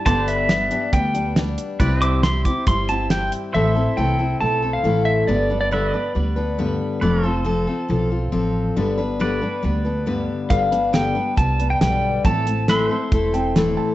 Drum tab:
HH |xxxxxxxx|xxxxxxxx|--------|--------|
SD |--o---o-|--o---o-|--------|--------|
BD |o---o---|o--oo---|--------|--------|

HH |--------|--------|xxx-xxx-|xxx-xxx-|
SD |--------|--------|--o---o-|--o---o-|
BD |--------|--------|o---o---|o---o---|